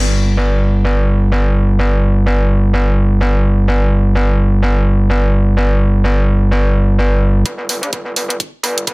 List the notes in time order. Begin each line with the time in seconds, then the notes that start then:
Already playing: G1
7.45 G1, kick, closed hi-hat
7.69 open hi-hat
7.83 A#1, closed hi-hat
7.93 G1, kick, closed hi-hat
8.16 open hi-hat
8.30 closed hi-hat
8.40 kick, closed hi-hat
8.63 G1, open hi-hat
8.78 closed hi-hat
8.87 G1, kick, closed hi-hat